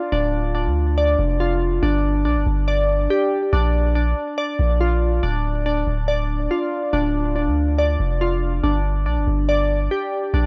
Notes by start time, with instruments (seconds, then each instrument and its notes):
Already playing: synth keys D4 F4 D5
0.12 808-style bass D1, synth keys D4
0.55 synth keys D4
0.66 808-style bass D2
0.98 synth keys D5
1.19 808-style bass F1
1.40 synth keys F4
1.83 808-style bass G1, synth keys D4
2.25 808-style bass A#1, synth keys D4
2.36 808-style bass G1
2.46 808-style bass G1
2.68 synth keys D5
3.10 synth keys G4
3.53 808-style bass A#1, synth keys D4
3.95 synth keys D4
4.38 synth keys D5
4.59 808-style bass A#1
4.81 synth keys F4
5.23 808-style bass D1, synth keys D4
5.66 synth keys D4
5.87 808-style bass D1
6.08 synth keys D5
6.51 synth keys F4
6.93 808-style bass D1, synth keys D4
7.36 synth keys D4
7.47 808-style bass D2
7.78 synth keys D5
8.00 808-style bass F1
8.21 synth keys F4
8.63 808-style bass G1, synth keys D4
9.06 808-style bass A#1, synth keys D4
9.17 808-style bass G1
9.27 808-style bass G1
9.49 synth keys D5
9.91 synth keys G4
10.34 808-style bass A#1, synth keys D4